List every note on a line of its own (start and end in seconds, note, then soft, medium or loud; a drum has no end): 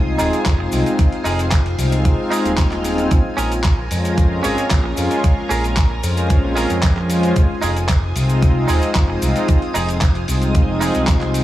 0.00 0.16 C2 loud
0.00 3.08 F4 medium
0.00 3.08 C5 medium
0.00 11.44 G#5 medium
0.00 0.97 D#6 medium
0.06 0.30 G#3 medium
0.06 0.30 C4 medium
0.06 0.30 D#4 medium
0.06 0.30 F4 medium
0.18 0.31 D#1 loud
0.18 0.39 D#4 loud
0.18 0.40 F4 medium
0.18 0.40 G#4 loud
0.18 open hi-hat medium
0.18 cabasa medium
0.33 0.40 G#3 medium
0.33 0.40 C4 medium
0.33 0.40 D#4 medium
0.33 0.41 F4 medium
0.33 closed hi-hat soft
0.33 cabasa soft
0.46 0.69 F1 medium
0.46 kick loud
0.46 clap loud
0.46 closed hi-hat medium
0.46 cabasa soft
0.58 0.96 G#3 medium
0.58 0.96 C4 medium
0.58 0.96 D#4 medium
0.58 0.97 F4 loud
0.58 muted clean electric guitar stroke medium
0.72 0.84 C2 medium
0.72 muted clean electric guitar stroke soft
0.72 open hi-hat medium
0.72 cabasa medium
0.86 closed hi-hat medium
0.86 cabasa soft
0.98 1.06 G#3 medium
0.98 1.06 C4 medium
0.98 1.06 D#4 medium
0.98 1.07 F4 loud
0.98 3.09 F6 medium
0.98 kick loud
0.98 closed hi-hat medium
0.98 cabasa soft
1.12 closed hi-hat soft
1.24 1.76 F1 medium
1.24 1.39 D#4 loud
1.24 1.39 F4 loud
1.24 1.40 G#4 loud
1.24 open hi-hat medium
1.24 cabasa medium
1.38 1.46 G#3 medium
1.38 1.46 C4 medium
1.38 1.46 D#4 medium
1.38 1.46 F4 medium
1.38 closed hi-hat medium
1.38 cabasa soft
1.51 muted clean electric guitar stroke medium
1.51 kick loud
1.51 clap loud
1.51 closed hi-hat medium
1.51 cabasa soft
1.65 muted clean electric guitar stroke soft
1.65 closed hi-hat soft
1.78 2.16 C2 loud
1.78 2.15 G#3 medium
1.78 2.16 C4 medium
1.78 2.16 D#4 medium
1.78 2.16 F4 medium
1.78 open hi-hat medium
1.78 cabasa medium
1.92 closed hi-hat medium
1.92 cabasa soft
2.05 kick loud
2.05 closed hi-hat medium
2.05 cabasa soft
2.18 2.42 G#3 medium
2.18 2.42 C4 medium
2.18 2.42 D#4 medium
2.18 2.43 F4 loud
2.31 2.51 D#4 loud
2.31 2.52 F4 loud
2.31 2.52 G#4 loud
2.31 open hi-hat medium
2.31 cabasa medium
2.45 3.08 D#1 medium
2.45 2.56 G#3 medium
2.45 2.56 C4 medium
2.45 2.56 D#4 medium
2.45 2.57 G#4 medium
2.45 closed hi-hat medium
2.45 cabasa soft
2.58 kick loud
2.58 clap loud
2.58 closed hi-hat medium
2.58 cabasa soft
2.71 3.08 G#3 medium
2.71 3.08 C4 medium
2.71 3.08 D#4 medium
2.71 3.08 F4 medium
2.71 muted clean electric guitar stroke medium
2.71 clap soft
2.71 closed hi-hat soft
2.84 muted clean electric guitar stroke soft
2.84 open hi-hat medium
2.84 cabasa medium
2.98 closed hi-hat soft
2.98 cabasa soft
3.10 3.23 A#1 medium
3.10 3.18 G#3 medium
3.10 3.18 C4 medium
3.10 3.19 C#4 medium
3.10 7.32 F4 medium
3.10 3.19 F4 loud
3.10 7.32 A#4 medium
3.10 7.32 A#5 medium
3.10 kick loud
3.10 closed hi-hat medium
3.10 cabasa soft
3.37 3.88 A#1 medium
3.37 3.51 C#4 loud
3.37 3.52 G#4 loud
3.37 3.52 A#4 loud
3.37 open hi-hat loud
3.37 cabasa medium
3.51 3.58 G#3 medium
3.51 3.58 C4 medium
3.51 3.59 C#4 medium
3.51 3.59 F4 loud
3.51 closed hi-hat soft
3.51 cabasa medium
3.64 muted clean electric guitar stroke medium
3.64 kick loud
3.64 clap loud
3.64 closed hi-hat medium
3.64 cabasa soft
3.77 muted clean electric guitar stroke soft
3.90 4.41 F2 loud
3.90 4.28 G#3 medium
3.90 4.28 C#4 medium
3.90 4.28 F4 medium
3.90 4.28 C5 medium
3.90 open hi-hat medium
3.90 cabasa medium
4.05 closed hi-hat medium
4.05 cabasa soft
4.18 kick loud
4.18 closed hi-hat medium
4.18 cabasa soft
4.31 4.55 G#3 medium
4.31 4.55 C4 medium
4.31 4.55 C#4 medium
4.31 4.55 F4 medium
4.43 4.56 G#1 medium
4.43 4.64 C#4 loud
4.43 4.64 G#4 medium
4.43 4.65 C#5 loud
4.43 open hi-hat loud
4.43 cabasa medium
4.57 4.65 G#3 medium
4.57 4.65 C4 medium
4.57 4.65 C#4 medium
4.57 4.65 F4 medium
4.57 closed hi-hat medium
4.57 cabasa soft
4.70 4.93 A#1 medium
4.70 kick loud
4.70 clap loud
4.70 closed hi-hat medium
4.70 cabasa soft
4.84 5.20 G#3 medium
4.84 5.21 C#4 medium
4.84 5.21 F4 loud
4.84 muted clean electric guitar stroke medium
4.96 5.09 F2 medium
4.96 muted clean electric guitar stroke soft
4.96 open hi-hat medium
4.96 cabasa medium
5.11 closed hi-hat medium
5.11 cabasa soft
5.23 5.31 G#3 medium
5.23 5.31 C4 medium
5.23 5.31 C#4 medium
5.23 5.31 F4 loud
5.23 kick loud
5.23 closed hi-hat medium
5.23 cabasa soft
5.49 6.00 A#1 medium
5.49 5.64 C#4 loud
5.49 5.64 G#4 loud
5.49 5.65 A#4 loud
5.49 open hi-hat loud
5.49 cabasa medium
5.64 5.71 G#3 medium
5.64 5.71 C4 medium
5.64 5.71 C#4 medium
5.64 5.71 F4 loud
5.64 closed hi-hat medium
5.64 cabasa medium
5.76 muted clean electric guitar stroke medium
5.76 kick loud
5.76 clap loud
5.76 closed hi-hat medium
5.76 cabasa soft
5.90 muted clean electric guitar stroke soft
6.03 6.40 F2 loud
6.03 6.40 G#3 medium
6.03 6.41 C#4 medium
6.03 6.41 F4 medium
6.03 6.41 C5 medium
6.03 open hi-hat medium
6.03 cabasa loud
6.17 closed hi-hat medium
6.17 cabasa medium
6.30 kick loud
6.30 closed hi-hat medium
6.30 cabasa soft
6.43 6.66 A#1 loud
6.43 6.67 G#3 medium
6.43 6.67 C4 medium
6.43 6.67 C#4 medium
6.43 6.68 F4 loud
6.56 6.76 C#4 loud
6.56 6.77 G#4 medium
6.56 6.77 A#4 loud
6.56 open hi-hat loud
6.56 cabasa medium
6.70 7.33 F2 medium
6.70 6.77 G#3 medium
6.70 6.77 C4 medium
6.70 6.77 C#4 medium
6.70 6.78 F4 medium
6.70 closed hi-hat soft
6.70 cabasa medium
6.83 kick loud
6.83 clap loud
6.83 closed hi-hat medium
6.83 cabasa soft
6.96 7.33 G#3 medium
6.96 7.33 C#4 medium
6.96 7.33 F4 loud
6.96 7.33 C5 medium
6.96 muted clean electric guitar stroke medium
6.96 clap soft
7.09 muted clean electric guitar stroke soft
7.09 open hi-hat medium
7.09 cabasa medium
7.23 closed hi-hat medium
7.23 cabasa soft
7.36 7.48 F1 loud
7.36 7.43 G#3 medium
7.36 7.44 C4 medium
7.36 7.44 D#4 medium
7.36 11.44 F4 medium
7.36 7.44 F4 loud
7.36 11.44 C5 medium
7.36 11.44 D#6 medium
7.36 kick loud
7.36 closed hi-hat medium
7.36 cabasa soft
7.62 8.13 F1 medium
7.62 7.76 D#4 loud
7.62 7.77 F4 loud
7.62 7.77 G#4 loud
7.62 open hi-hat loud
7.62 cabasa medium
7.76 7.83 G#3 medium
7.76 7.83 C4 medium
7.76 7.84 D#4 medium
7.76 7.84 F4 loud
7.76 closed hi-hat soft
7.76 cabasa medium
7.88 muted clean electric guitar stroke medium
7.88 kick loud
7.88 clap loud
7.88 closed hi-hat medium
7.88 cabasa soft
8.02 muted clean electric guitar stroke soft
8.16 8.66 C2 loud
8.16 8.53 G#3 medium
8.16 8.53 C4 medium
8.16 8.53 D#4 medium
8.16 8.53 F4 medium
8.16 open hi-hat medium
8.16 cabasa medium
8.29 closed hi-hat soft
8.29 cabasa soft
8.42 kick loud
8.42 closed hi-hat medium
8.42 cabasa soft
8.56 8.79 G#3 medium
8.56 8.79 C4 medium
8.56 8.80 D#4 medium
8.56 8.80 F4 medium
8.68 8.81 D#1 loud
8.68 8.89 D#4 loud
8.68 8.89 F4 medium
8.68 8.90 G#4 loud
8.68 open hi-hat loud
8.68 cabasa medium
8.82 8.90 G#3 medium
8.82 8.90 C4 medium
8.82 8.90 D#4 medium
8.82 8.90 F4 medium
8.82 closed hi-hat soft
8.82 cabasa medium
8.95 9.18 F1 medium
8.95 kick loud
8.95 clap loud
8.95 closed hi-hat medium
8.95 cabasa soft
9.08 9.46 G#3 medium
9.08 9.46 C4 medium
9.08 9.46 D#4 medium
9.08 9.46 F4 loud
9.08 muted clean electric guitar stroke medium
9.21 9.34 C2 medium
9.21 muted clean electric guitar stroke soft
9.21 open hi-hat medium
9.21 cabasa medium
9.36 closed hi-hat soft
9.36 cabasa medium
9.48 9.56 G#3 medium
9.48 9.56 C4 medium
9.48 9.56 D#4 medium
9.48 9.56 F4 loud
9.48 kick loud
9.48 closed hi-hat medium
9.48 cabasa soft
9.62 closed hi-hat soft
9.74 10.25 F1 medium
9.74 9.89 D#4 loud
9.74 9.89 F4 loud
9.74 9.89 G#4 loud
9.74 open hi-hat loud
9.74 cabasa loud
9.89 9.96 G#3 medium
9.89 9.96 C4 medium
9.89 9.96 D#4 medium
9.89 9.96 F4 loud
9.89 closed hi-hat soft
9.89 cabasa soft
10.01 muted clean electric guitar stroke medium
10.01 kick loud
10.01 clap loud
10.01 closed hi-hat medium
10.01 cabasa soft
10.15 muted clean electric guitar stroke soft
10.15 closed hi-hat soft
10.28 10.65 C2 loud
10.28 10.65 G#3 medium
10.28 10.66 C4 medium
10.28 10.66 D#4 medium
10.28 10.66 F4 medium
10.28 open hi-hat medium
10.28 cabasa loud
10.42 closed hi-hat soft
10.42 cabasa soft
10.55 kick loud
10.55 closed hi-hat medium
10.55 cabasa soft
10.69 10.91 F1 loud
10.69 10.92 G#3 medium
10.69 10.92 C4 medium
10.69 10.92 D#4 medium
10.69 10.92 F4 medium
10.80 11.01 D#4 loud
10.80 11.02 F4 medium
10.80 11.02 G#4 loud
10.80 open hi-hat loud
10.80 cabasa medium
10.94 11.44 C2 medium
10.94 11.06 G#3 medium
10.94 11.06 C4 medium
10.94 11.06 D#4 medium
10.94 11.07 G#4 medium
10.94 closed hi-hat soft
10.94 cabasa medium
11.07 kick loud
11.07 clap loud
11.07 closed hi-hat medium
11.07 cabasa soft
11.21 11.44 G#3 medium
11.21 11.44 C4 medium
11.21 11.44 D#4 medium
11.21 11.44 F4 loud
11.21 muted clean electric guitar stroke medium
11.21 clap soft
11.21 closed hi-hat soft
11.34 muted clean electric guitar stroke soft
11.34 open hi-hat medium
11.34 cabasa medium